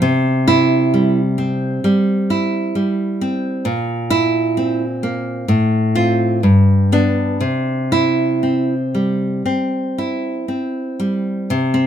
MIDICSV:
0, 0, Header, 1, 2, 480
1, 0, Start_track
1, 0, Key_signature, 0, "major"
1, 0, Tempo, 903614
1, 20, Time_signature, 4, 2, 24, 8
1, 2420, Tempo, 937500
1, 3380, Tempo, 996678
1, 4340, Tempo, 1016949
1, 5966, End_track
2, 0, Start_track
2, 0, Title_t, "Nylon-string guitar"
2, 0, Program_c, 0, 24
2, 9, Note_on_c, 0, 48, 73
2, 253, Note_on_c, 0, 64, 78
2, 498, Note_on_c, 0, 55, 51
2, 637, Note_off_c, 0, 64, 0
2, 733, Note_on_c, 0, 60, 53
2, 949, Note_off_c, 0, 48, 0
2, 972, Note_off_c, 0, 55, 0
2, 978, Note_on_c, 0, 55, 57
2, 1223, Note_on_c, 0, 64, 55
2, 1456, Note_off_c, 0, 55, 0
2, 1459, Note_off_c, 0, 60, 0
2, 1462, Note_on_c, 0, 55, 47
2, 1707, Note_on_c, 0, 60, 53
2, 1938, Note_off_c, 0, 55, 0
2, 1939, Note_on_c, 0, 46, 66
2, 1940, Note_off_c, 0, 64, 0
2, 1941, Note_off_c, 0, 60, 0
2, 2180, Note_on_c, 0, 64, 82
2, 2428, Note_on_c, 0, 60, 50
2, 2564, Note_off_c, 0, 64, 0
2, 2663, Note_on_c, 0, 58, 47
2, 2873, Note_off_c, 0, 46, 0
2, 2895, Note_on_c, 0, 45, 59
2, 2897, Note_off_c, 0, 58, 0
2, 2897, Note_off_c, 0, 60, 0
2, 3135, Note_on_c, 0, 60, 47
2, 3137, Note_on_c, 0, 65, 64
2, 3361, Note_off_c, 0, 60, 0
2, 3362, Note_off_c, 0, 65, 0
2, 3368, Note_off_c, 0, 45, 0
2, 3381, Note_on_c, 0, 43, 52
2, 3616, Note_on_c, 0, 59, 51
2, 3619, Note_on_c, 0, 62, 68
2, 3837, Note_off_c, 0, 59, 0
2, 3837, Note_off_c, 0, 62, 0
2, 3841, Note_off_c, 0, 43, 0
2, 3849, Note_on_c, 0, 48, 61
2, 4097, Note_on_c, 0, 64, 74
2, 4342, Note_on_c, 0, 60, 40
2, 4487, Note_off_c, 0, 64, 0
2, 4586, Note_on_c, 0, 55, 41
2, 4809, Note_off_c, 0, 48, 0
2, 4821, Note_off_c, 0, 60, 0
2, 4827, Note_on_c, 0, 60, 44
2, 5076, Note_on_c, 0, 64, 43
2, 5306, Note_off_c, 0, 60, 0
2, 5312, Note_on_c, 0, 60, 40
2, 5314, Note_off_c, 0, 55, 0
2, 5554, Note_on_c, 0, 55, 49
2, 5790, Note_off_c, 0, 55, 0
2, 5790, Note_off_c, 0, 60, 0
2, 5792, Note_off_c, 0, 64, 0
2, 5793, Note_on_c, 0, 48, 64
2, 5904, Note_on_c, 0, 60, 52
2, 5966, Note_off_c, 0, 48, 0
2, 5966, Note_off_c, 0, 60, 0
2, 5966, End_track
0, 0, End_of_file